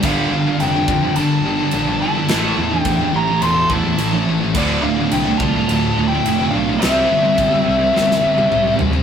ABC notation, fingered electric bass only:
X:1
M:4/4
L:1/8
Q:1/4=106
K:Dm
V:1 name="Fingered electric bass" clef=bass
G,,, G,,, F,,, F,, G,,, G,,, B,,, G,,, | A,,, E,, E,, A,,, E,,, E,, A,,, A,,, | D,,, D,,, C,, C,, D,,, D,,, F,,, =B,,, | C,, G,,, G,,, C,, G,,, G,,, C,, C,, |]